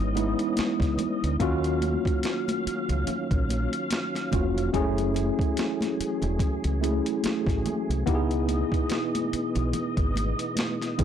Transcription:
Already playing: tonewheel organ E3 B3 C#4 D#5, tine electric piano G#3 B3 D#4 E4
0.00 fingered electric bass G#1
0.15 tine electric piano G#3 B3 D#4 E4, closed hi-hat, high conga
0.39 closed hi-hat
0.56 muted fingered electric bass stroke, snare, closed hi-hat, high conga
0.80 fingered electric bass C#2, kick, snare, closed hi-hat, muted conga
0.98 closed hi-hat, high conga, low conga
1.24 fingered electric bass D2, closed hi-hat
1.40 fingered electric bass D#2, tonewheel organ D#3 F#3 C#4 F5, tine electric piano A#3 C#4 F4 F#4, kick, closed hi-hat, muted conga
1.63 closed hi-hat, muted conga
1.81 closed hi-hat, high conga
2.05 kick, closed hi-hat
2.23 snare, closed hi-hat, muted conga
2.48 closed hi-hat, muted conga, high conga
2.67 muted fingered electric bass stroke, closed hi-hat
2.89 fingered electric bass C#2, closed hi-hat, low conga
3.07 muted fingered electric bass stroke, closed hi-hat, muted conga, high conga, low conga
3.31 fingered electric bass A#1, kick, closed hi-hat
3.49 closed hi-hat, high conga
3.73 closed hi-hat
3.91 snare, closed hi-hat, muted conga, high conga
4.15 snare, closed hi-hat, muted conga
4.31 fingered electric bass F1, tine electric piano A#3 C#4 F4 F#4, kick, closed hi-hat, high conga, low conga
4.58 closed hi-hat
4.73 fingered electric bass F#1, tonewheel organ E3 F#3 A3 G#4, tine electric piano G#3 C#4 E4 G#4, kick, closed hi-hat
4.79 tine electric piano A3
4.97 closed hi-hat, muted conga
5.14 closed hi-hat, high conga
5.39 kick, closed hi-hat
5.57 snare, closed hi-hat, muted conga
5.81 snare, closed hi-hat, muted conga, high conga
6.00 muted fingered electric bass stroke, closed hi-hat
6.22 fingered electric bass E1, closed hi-hat, low conga
6.39 kick, closed hi-hat, low conga
6.64 fingered electric bass C#2, closed hi-hat, muted conga
6.81 tine electric piano A3 C#4 E4 G#4, closed hi-hat, high conga
7.06 closed hi-hat
7.24 muted fingered electric bass stroke, snare, closed hi-hat, muted conga, high conga
7.47 fingered electric bass A1, kick, snare, closed hi-hat, muted conga
7.66 closed hi-hat, high conga, low conga
7.90 fingered electric bass C2, closed hi-hat
8.06 fingered electric bass C#2, tonewheel organ B2 B3 D#5, tine electric piano B3 D#4 E4 G4, kick, closed hi-hat
8.15 tine electric piano G#4
8.31 closed hi-hat
8.48 closed hi-hat, high conga
8.72 kick, closed hi-hat
8.90 snare, closed hi-hat
9.15 closed hi-hat, muted conga, high conga
9.33 muted fingered electric bass stroke, closed hi-hat
9.55 fingered electric bass B1, closed hi-hat, low conga
9.73 closed hi-hat, high conga, low conga
9.97 fingered electric bass G#1, kick, closed hi-hat
10.16 closed hi-hat, high conga
10.39 closed hi-hat
10.56 snare, closed hi-hat, muted conga, high conga
10.82 snare, closed hi-hat
10.98 fingered electric bass C2, tine electric piano B3 D#4 E4 G#4, kick, closed hi-hat, high conga, low conga

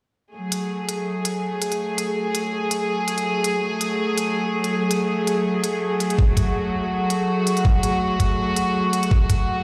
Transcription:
0.34 string section F#3 A3 G#4, synth texture G#4
0.52 closed hi-hat
0.89 closed hi-hat
1.25 closed hi-hat
1.62 closed hi-hat
1.72 closed hi-hat
1.98 closed hi-hat
2.35 closed hi-hat
2.71 closed hi-hat
3.08 closed hi-hat
3.18 closed hi-hat
3.44 closed hi-hat
3.81 closed hi-hat
4.18 closed hi-hat
4.64 closed hi-hat
4.91 closed hi-hat
5.27 closed hi-hat
5.64 closed hi-hat
6.00 closed hi-hat
6.10 closed hi-hat
6.18 string section F#4, kick
6.37 kick, closed hi-hat
7.10 closed hi-hat
7.47 closed hi-hat
7.57 closed hi-hat
7.65 kick
7.83 closed hi-hat
8.20 kick, closed hi-hat
8.56 closed hi-hat
8.93 closed hi-hat
9.03 closed hi-hat
9.11 kick
9.30 kick, closed hi-hat

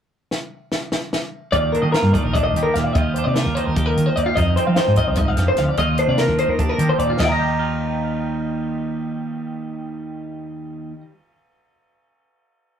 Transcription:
0.31 snare
0.72 snare
0.92 snare
1.13 snare
1.52 picked electric bass D#2, clean electric guitar D#2 F4 D5, kick, closed hi-hat
1.72 clean electric guitar D4 A#4, closed hi-hat
1.82 picked electric bass D#3, clean electric guitar D#5
1.92 clean electric guitar F4 A#4, snare, closed hi-hat
2.03 picked electric bass G2
2.13 clean electric guitar D#3 D5, kick, closed hi-hat
2.23 picked electric bass A#1, clean electric guitar A#4
2.34 clean electric guitar D4 D5, kick, closed hi-hat
2.44 clean electric guitar D#5
2.54 picked electric bass D#2, clean electric guitar G3, closed hi-hat
2.63 clean electric guitar A#4
2.74 picked electric bass D#2, clean electric guitar A#2 F5, snare, closed hi-hat
2.84 clean electric guitar D5
2.93 picked electric bass D#2, clean electric guitar D#5, kick, closed hi-hat
2.97 clean electric guitar D#2 F4
3.14 clean electric guitar D4 C5, closed hi-hat
3.24 picked electric bass C3, clean electric guitar D5
3.34 clean electric guitar F4 A#4, snare, closed hi-hat
3.46 picked electric bass D#2
3.55 clean electric guitar D#3 C5, closed hi-hat
3.65 picked electric bass D#2, clean electric guitar A#4
3.75 clean electric guitar G4, kick, closed hi-hat
3.86 clean electric guitar A#4
3.97 picked electric bass D#3, closed hi-hat
4.06 clean electric guitar C5
4.15 clean electric guitar D#2 D5, picked electric bass D#2, closed hi-hat
4.26 clean electric guitar F4
4.36 picked electric bass F2, clean electric guitar F2 D#4 D#5, kick, closed hi-hat
4.56 clean electric guitar C4 C5, closed hi-hat
4.67 picked electric bass F3, clean electric guitar F5
4.76 clean electric guitar D#4 C5, snare, closed hi-hat
4.88 picked electric bass G#2
4.96 clean electric guitar F3 D#5, kick, closed hi-hat
5.07 picked electric bass C2, clean electric guitar C5
5.15 clean electric guitar G#2 D#5, kick, closed hi-hat
5.28 clean electric guitar F5
5.37 picked electric bass F2, clean electric guitar G2, snare, closed hi-hat
5.48 clean electric guitar C5
5.57 picked electric bass D2, clean electric guitar F2 F5, snare, closed hi-hat
5.69 clean electric guitar D5
5.77 picked electric bass D#2, clean electric guitar D#2 F4 D#5, kick, closed hi-hat
5.98 clean electric guitar D4 C5, closed hi-hat
6.08 picked electric bass C3, clean electric guitar D5
6.18 clean electric guitar F4 A#4, snare, closed hi-hat
6.28 picked electric bass D#2
6.38 clean electric guitar D#3 C5, closed hi-hat
6.48 picked electric bass D#2, clean electric guitar A#4
6.59 clean electric guitar D4 G4, kick, closed hi-hat
6.69 clean electric guitar A#4
6.78 picked electric bass D#3, clean electric guitar G3, closed hi-hat
6.89 clean electric guitar C5
6.98 picked electric bass D#2, clean electric guitar A#2 D5, closed hi-hat
7.10 clean electric guitar F4
7.19 picked electric bass D#2, clean electric guitar D#2 D#5, kick, snare, ride bell
7.24 clean electric guitar G5
7.28 clean electric guitar D#3 A#5
7.32 clean electric guitar D#5
7.39 clean electric guitar G3
7.59 clean electric guitar F4

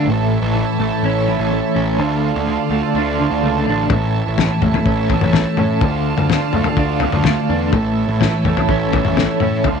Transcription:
Already playing: clean electric guitar A3, string section A4
0.05 picked electric bass A1, clean electric guitar A2, string section E4 C#5 E5 A5
0.42 picked electric bass A1
0.55 clean electric guitar E3
0.79 picked electric bass A1, clean electric guitar A3
1.03 picked electric bass A1, clean electric guitar C#4
1.28 clean electric guitar E3
1.39 picked electric bass A1
1.51 clean electric guitar A3
1.75 picked electric bass A1, clean electric guitar C#4
1.97 picked electric bass D2, clean electric guitar D3, string section F4 D5 F5 A5
2.36 picked electric bass D2
2.47 clean electric guitar D3
2.70 picked electric bass D2, clean electric guitar A3
2.94 picked electric bass D2, clean electric guitar D4
3.19 clean electric guitar D3
3.31 picked electric bass D2
3.43 picked electric bass C#2, clean electric guitar A3
3.67 picked electric bass A1, clean electric guitar D4
3.89 picked electric bass A1, clean electric guitar A2, string section E4 C#5 E5, kick, floor tom
4.27 picked electric bass A1
4.38 clean electric guitar E3, snare, floor tom
4.62 picked electric bass A1, clean electric guitar A3, kick, mid tom
4.74 floor tom
4.85 picked electric bass A1, clean electric guitar C#4, kick
5.09 clean electric guitar E3, kick, floor tom
5.21 picked electric bass A1, mid tom
5.33 clean electric guitar A3, snare, floor tom
5.57 picked electric bass A2, clean electric guitar C#4, mid tom
5.81 picked electric bass D2, clean electric guitar D3, string section F4 A4, kick, floor tom
5.85 string section D5 F5
6.17 picked electric bass D2, mid tom
6.29 clean electric guitar D3, snare, floor tom
6.53 picked electric bass D2, clean electric guitar A3, mid tom
6.64 floor tom
6.77 picked electric bass D2, clean electric guitar D4, kick
7.00 clean electric guitar D3, floor tom
7.12 picked electric bass D2, mid tom
7.24 clean electric guitar A3, snare, floor tom
7.49 picked electric bass E2, clean electric guitar D4
7.72 picked electric bass A1, clean electric guitar A2, string section E4 C#5 E5, kick, floor tom
8.08 picked electric bass A1
8.21 clean electric guitar E3, snare, floor tom
8.45 picked electric bass A1, clean electric guitar A3, kick, mid tom
8.57 floor tom
8.69 picked electric bass A1, clean electric guitar C#4, kick
8.93 clean electric guitar E3, kick, floor tom
9.05 picked electric bass A1, mid tom
9.17 clean electric guitar A3, snare, floor tom
9.40 picked electric bass A2, clean electric guitar C#4, mid tom
9.64 picked electric bass D2, clean electric guitar D3, string section F4 D5 F5, kick, floor tom

